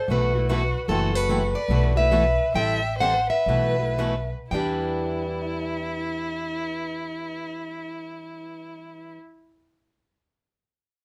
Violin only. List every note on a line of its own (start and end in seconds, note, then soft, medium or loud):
0.10 0.47 F#4 medium
0.49 0.86 F#4 medium
0.88 1.14 F#4 medium
1.14 1.53 F#4 medium
1.54 1.92 B4 medium
1.96 2.50 B4 medium
2.55 2.97 E5 medium
2.98 3.27 C5 medium
3.30 4.28 B4 medium
4.51 9.13 E4 medium